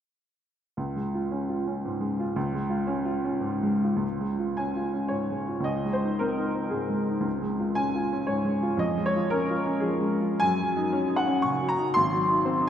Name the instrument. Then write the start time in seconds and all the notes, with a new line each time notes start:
upright piano
0.77 C#2
0.96 G#3
1.14 F4
1.31 C#4
1.49 F4
1.67 C#4
1.85 G#2
2.00 G#3
2.20 F4
2.36 C#2
2.53 G#3
2.70 F4
2.87 C#4
3.05 F4
3.24 C#4
3.41 G#2
3.63 G#3
3.84 F4
3.96 C#2
4.20 G#3
4.39 F4
4.57 C#4 G#5
4.76 F4
4.93 C#4
5.08 G#2 C#5
5.30 G#3
5.48 F4
5.60 C#2
5.64 D#5
5.85 G#3
5.93 C5
6.03 D#4
6.19 C4 A#4
6.37 D#4
6.54 C4
6.70 G#2 G#4
6.89 G#3
7.09 D#4
7.20 C#2
7.42 G#3
7.60 F4
7.75 C#4 G#5
7.95 F4
8.12 C#4
8.27 G#2 C#5
8.45 G#3
8.62 F4
8.77 F2 D#5
8.97 G#3
9.06 C#5
9.16 F4
9.30 C#4 A#4
9.50 F4
9.66 C#4
9.80 F3 G#4
10.00 G#3
10.21 F4
10.40 F#2 G#5
10.59 F#3
10.77 D#4
10.93 C#4
11.08 D#4
11.16 F#5
11.27 C#4
11.42 C#3 C#6
11.61 F#3
11.69 A#5
11.78 D#4
11.94 G#1 C6
12.13 F#3
12.29 D#4
12.45 C4
12.61 D#4